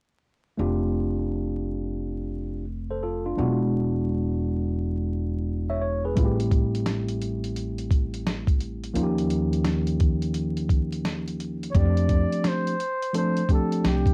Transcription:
0.57 upright bass F1, tine electric piano A3 C4 D4 F4 G4
2.91 tine electric piano A4 C5
3.03 tine electric piano F4 A4
3.26 tine electric piano D4 F4
3.37 upright bass E1, tine electric piano F#3 B3 D4 E4 F#4
3.43 tine electric piano G#3
5.70 tine electric piano C#5 E5
5.82 tine electric piano C#5
6.05 tine electric piano G#4 B4
6.15 upright bass A1, tine electric piano G3 A3 C4 E4 F4, kick, closed hi-hat
6.25 tine electric piano G4
6.40 closed hi-hat
6.51 kick, closed hi-hat
6.75 closed hi-hat
6.86 snare, closed hi-hat
7.08 closed hi-hat
7.22 closed hi-hat
7.44 closed hi-hat
7.56 closed hi-hat
7.78 closed hi-hat
7.91 kick, closed hi-hat
8.14 closed hi-hat
8.27 snare, closed hi-hat
8.47 kick, closed hi-hat
8.61 closed hi-hat
8.84 closed hi-hat
8.94 upright bass D#2, tine electric piano F3 A#3 C#4 D#4 F4, closed hi-hat
9.03 tine electric piano G4
9.18 closed hi-hat
9.30 closed hi-hat
9.53 closed hi-hat
9.64 snare, closed hi-hat
9.87 closed hi-hat
10.00 kick, closed hi-hat
10.22 closed hi-hat
10.34 closed hi-hat
10.57 closed hi-hat
10.69 kick, closed hi-hat
10.92 closed hi-hat
11.05 snare, closed hi-hat
11.28 closed hi-hat
11.40 closed hi-hat
11.63 closed hi-hat
11.70 flugelhorn C#5
11.75 upright bass F2, tine electric piano F3 A3 C4 D4 G4, flugelhorn D5, kick, closed hi-hat
11.97 closed hi-hat
12.09 kick, closed hi-hat
12.32 closed hi-hat
12.44 flugelhorn C5, snare, closed hi-hat
12.67 closed hi-hat
12.80 closed hi-hat
13.02 closed hi-hat
13.13 tine electric piano F3 A3 C4 D4 A4, flugelhorn C5, closed hi-hat
13.37 closed hi-hat
13.49 tine electric piano F3 A3 C4 D4 G4, kick, closed hi-hat
13.53 flugelhorn A4
13.72 closed hi-hat
13.84 upright bass C2, flugelhorn G4, snare, closed hi-hat
14.06 kick, closed hi-hat

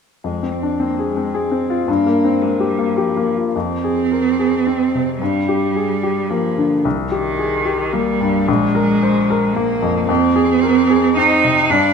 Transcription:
0.24 grand piano F2, cello G#3
0.43 grand piano C4
0.52 cello C4
0.62 grand piano D4
0.80 cello A#3, grand piano C4
0.99 grand piano G#4
1.08 cello G#3
1.17 grand piano C4
1.34 cello C4, grand piano G#4
1.51 grand piano C4
1.70 grand piano F4
1.88 grand piano G2, cello A#3
2.06 grand piano A#3
2.24 grand piano C4
2.42 cello G#3, grand piano A#3
2.60 grand piano G4
2.70 cello G3
2.79 grand piano A#3
2.97 cello F3, grand piano G4
3.17 grand piano A#3
3.37 grand piano F4
3.55 grand piano F2, cello C4
3.84 grand piano G#4
4.11 grand piano A#4
4.39 grand piano G#4
4.67 grand piano C4
4.95 grand piano C3
5.21 grand piano G2, cello G3
5.48 grand piano G4
5.76 grand piano G#4
6.03 grand piano G4
6.29 cello F3, grand piano A#3
6.58 grand piano D3
6.85 grand piano C2
7.11 cello D#3, grand piano G4
7.39 grand piano G#4
7.65 grand piano G4
7.93 cello G3, grand piano A#3
8.21 grand piano G2
8.47 grand piano A#1, cello G#3
8.75 grand piano A#4
9.03 grand piano C5
9.30 grand piano A#4
9.54 cello A#3, grand piano A#3
9.82 grand piano F2
10.08 grand piano F2, cello C4
10.36 grand piano G#4
10.63 grand piano A#4
10.90 grand piano G#4
11.17 grand piano C4, cello D#4
11.44 grand piano C3
11.70 grand piano G2, cello D4

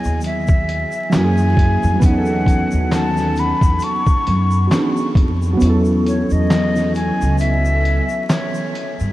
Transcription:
Already playing: synth keys F#3 B3 E4 G#4, flute G#5
0.04 upright bass D#2, shaker
0.21 closed hi-hat, shaker
0.26 flute E5
0.47 kick, shaker
0.69 closed hi-hat
0.92 shaker
1.10 synth keys F#3 A#3 C#4, snare, clap, shaker
1.14 upright bass F#2, synth keys E4 F#4, flute G#5, closed hi-hat
1.24 synth keys G#4
1.38 shaker
1.57 kick, closed hi-hat
1.83 upright bass F2, shaker
1.95 synth keys F#3
2.00 upright bass E2, synth keys B3, kick, closed hi-hat, shaker
2.04 synth keys C#4 D#4, flute F#5
2.12 synth keys G#4
2.18 synth keys A4
2.26 shaker
2.46 kick, closed hi-hat, shaker
2.71 upright bass D#2, shaker
2.92 flute A5, snare, clap, closed hi-hat, shaker
3.17 snare, shaker
3.36 flute B5, closed hi-hat, shaker
3.61 upright bass E2, kick, shaker
3.79 closed hi-hat, shaker
3.84 flute C#6
4.06 kick, shaker
4.27 upright bass F#2, closed hi-hat
4.51 shaker
4.67 synth keys B3 F#4
4.71 synth keys C#4 D4, snare, clap, closed hi-hat, shaker
4.76 synth keys G#4
4.80 synth keys D#4
4.97 shaker
5.15 upright bass F2, kick, closed hi-hat
5.42 shaker
5.53 synth keys F#3 B3
5.61 upright bass E2, synth keys C#4, closed hi-hat, shaker
5.65 synth keys E4 A4
5.85 shaker
6.06 flute C#5, closed hi-hat, shaker
6.30 upright bass E2, flute D#5, shaker
6.51 snare, clap, closed hi-hat, shaker
6.76 snare, shaker
6.95 flute G#5, closed hi-hat, shaker
7.21 upright bass C#2, shaker
7.38 flute E5, closed hi-hat, shaker
7.65 shaker
7.85 closed hi-hat
8.09 shaker
8.29 flute C#5, snare, clap, closed hi-hat, shaker
8.54 shaker
8.75 closed hi-hat
9.00 upright bass G2, shaker

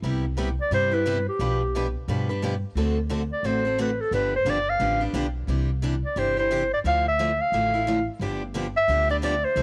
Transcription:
0.02 upright bass C2, steel-string acoustic guitar C3 G3 B3 E4 G4
0.37 steel-string acoustic guitar C3 G3 B3 E4 G4
0.61 clarinet D5
0.71 upright bass G2, steel-string acoustic guitar C3 G3 B3 E4 G4, clarinet C5
0.91 steel-string acoustic guitar B3 E4 G4, clarinet B4
1.06 steel-string acoustic guitar C3 G3 B3 E4 G4
1.28 clarinet G4
1.39 upright bass B1, steel-string acoustic guitar B2 F3 B3 D4 G4 B4
1.75 steel-string acoustic guitar B2 F3 B3 D4 G4 B4
2.08 upright bass G2, steel-string acoustic guitar B2 F3 B3 D4 G4 B4
2.29 steel-string acoustic guitar B3 D4 G4 B4
2.42 steel-string acoustic guitar B2 F3 B3 D4 G4 B4
2.75 upright bass D2, steel-string acoustic guitar D3 A3 C4 F#4 A4
3.09 steel-string acoustic guitar D3 A3 C4 F#4 A4
3.32 clarinet D5
3.43 upright bass A1, steel-string acoustic guitar D3 A3 C4 F#4 A4, clarinet C5
3.65 steel-string acoustic guitar C4 F#4 A4
3.78 steel-string acoustic guitar D3 A3 C4 F#4 A4, clarinet B4
4.00 clarinet A4
4.11 upright bass G1, steel-string acoustic guitar D3 F3 B3 D4 G4, clarinet B4
4.36 clarinet C5
4.45 upright bass G1, steel-string acoustic guitar D3 F3 B3 D4 G4
4.49 clarinet D5
4.69 clarinet F5
4.80 upright bass A1, steel-string acoustic guitar D3 F3 B3 D4 G4
5.00 steel-string acoustic guitar B3 D4 G4
5.13 upright bass B1, steel-string acoustic guitar D3 F3 B3 D4 G4
5.47 upright bass C2, steel-string acoustic guitar C3 E3 D4 G4
5.82 steel-string acoustic guitar C3 E3 D4 G4
6.05 clarinet D5
6.16 upright bass G1, steel-string acoustic guitar C3 E3 D4 G4, clarinet C5
6.37 steel-string acoustic guitar E3 D4 G4, clarinet C5
6.51 steel-string acoustic guitar C3 E3 D4 G4
6.74 clarinet D5
6.84 upright bass D2, steel-string acoustic guitar D3 F3 A3 E4, clarinet F5
7.08 clarinet E5
7.19 steel-string acoustic guitar D3 F3 A3 E4
7.41 clarinet F5
7.52 upright bass A1, steel-string acoustic guitar D3 F3 A3 E4
7.74 steel-string acoustic guitar F3 A3 E4
7.87 steel-string acoustic guitar D3 F3 A3 E4
8.20 upright bass G1, steel-string acoustic guitar D3 F3 B3 D4 G4
8.54 steel-string acoustic guitar D3 F3 B3 D4 G4
8.77 clarinet E5
8.88 upright bass D2, steel-string acoustic guitar D3 F3 B3 D4 G4
9.09 steel-string acoustic guitar B3 D4 G4, clarinet D5
9.22 steel-string acoustic guitar D3 F3 B3 D4 G4, clarinet D5
9.44 clarinet C5
9.56 upright bass C2, steel-string acoustic guitar C3 E3 G3 C4 E4 A4

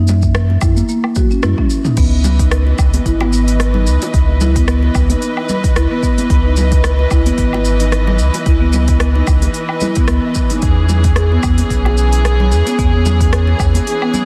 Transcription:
Already playing: sub bass F#2, singing bowl E3 E5
0.08 high bongo, low conga, shaker
0.22 kick, shaker
0.35 cross-stick, shaker
0.50 high bongo, high conga
0.61 sub bass F#2, marimba E4, kick, low woodblock, shaker
0.76 marimba A#3, high conga, shaker
0.89 marimba A#3, shaker
1.04 cross-stick, low woodblock
1.16 marimba F#4, kick, high conga, low conga, shaker
1.31 marimba C#4, shaker
1.43 sub bass F#2, marimba E4, cross-stick, high tom, shaker
1.58 marimba C#4, kick, high tom
1.70 shaker
1.85 marimba D#4, mid tom, high conga, shaker
1.97 sub bass C#2, string section E3 B4 D#5, marimba B3, kick, open hi-hat, crash, shaker
2.24 high bongo, low conga, shaker
2.39 marimba D#4, kick, open hi-hat, shaker
2.51 cross-stick, open hi-hat, shaker
2.67 high bongo
2.79 sub bass C#2, kick, low woodblock, shaker
2.94 open hi-hat, high conga, shaker
3.06 sub bass G#1, marimba E4, kick, open hi-hat, shaker
3.21 marimba B3, high bongo, low woodblock
3.33 marimba B3, shaker
3.48 open hi-hat, shaker
3.60 cross-stick, open hi-hat, shaker
3.74 marimba D#4, low conga
3.87 sub bass C#2, shaker
4.02 open hi-hat, high bongo, shaker
4.14 sub bass C#2, kick, open hi-hat, shaker
4.29 high conga
4.41 marimba E4, high bongo, low conga, shaker
4.56 marimba B3, kick, open hi-hat, shaker
4.68 marimba B3, cross-stick, open hi-hat, shaker
4.82 high bongo, high conga
4.95 sub bass C#2, kick, low woodblock, shaker
5.10 marimba D#4, open hi-hat, high conga, shaker
5.22 open hi-hat, shaker
5.37 low woodblock
5.49 high conga, low conga, shaker
5.64 kick, open hi-hat, shaker
5.76 sub bass C#2, marimba E4, cross-stick, open hi-hat, shaker
5.91 marimba B3
6.03 marimba B3, kick, shaker
6.18 open hi-hat, high conga, shaker
6.30 sub bass C#2, kick, open hi-hat, shaker
6.45 marimba D#4
6.57 high bongo, low conga, shaker
6.72 kick, open hi-hat, shaker
6.84 cross-stick, open hi-hat, shaker
6.99 high bongo
7.11 sub bass C#2, marimba E4, kick, low woodblock, shaker
7.26 marimba B3, open hi-hat, high conga, shaker
7.38 sub bass G#1, marimba B3, kick, open hi-hat, shaker
7.53 high bongo, low woodblock
7.65 shaker
7.80 marimba D#4, open hi-hat, shaker
7.92 cross-stick, open hi-hat, shaker
8.07 low conga
8.19 sub bass C#2, shaker
8.34 open hi-hat, high bongo, shaker
8.46 sub bass C#2, marimba E4, kick, open hi-hat, shaker
8.60 marimba B3, high conga
8.73 marimba B3, high bongo, low conga, shaker
8.88 kick, open hi-hat, shaker
9.00 cross-stick, open hi-hat, shaker
9.15 marimba D#4, high bongo, high conga
9.27 sub bass C#2, kick, low woodblock, shaker
9.42 open hi-hat, high conga, shaker
9.54 open hi-hat, shaker
9.69 low woodblock
9.81 marimba E4, high conga, low conga, shaker
9.96 marimba B3, kick, open hi-hat, shaker
10.08 sub bass C#2, marimba B3, cross-stick, open hi-hat, shaker
10.35 kick, shaker
10.50 marimba D#4, open hi-hat, high conga, shaker
10.62 sub bass E2, string section C#4 G#4, kick, open hi-hat, shaker
10.89 high bongo, low conga, shaker
11.04 kick, open hi-hat, shaker
11.16 marimba G#4, cross-stick, open hi-hat, shaker
11.31 marimba B3, high bongo
11.43 sub bass E2, marimba B3, kick, low woodblock, shaker
11.58 open hi-hat, high conga, shaker
11.70 sub bass B1, kick, open hi-hat, shaker
11.85 marimba G#4, high bongo, low woodblock
11.98 shaker
12.13 open hi-hat, shaker
12.25 cross-stick, open hi-hat, shaker
12.40 low conga
12.52 sub bass E2, marimba G#4, shaker
12.66 marimba B3, open hi-hat, high bongo, shaker
12.79 sub bass E2, marimba B3, kick, open hi-hat, shaker
12.93 high conga
13.05 high bongo, low conga, shaker
13.20 marimba G#4, kick, open hi-hat, shaker
13.33 cross-stick, open hi-hat, shaker
13.47 high bongo, high conga
13.60 sub bass E2, kick, low woodblock, shaker
13.75 open hi-hat, high conga, shaker
13.87 marimba G#4, open hi-hat, shaker
14.02 marimba B3, low woodblock
14.14 marimba B3, high conga, low conga, shaker

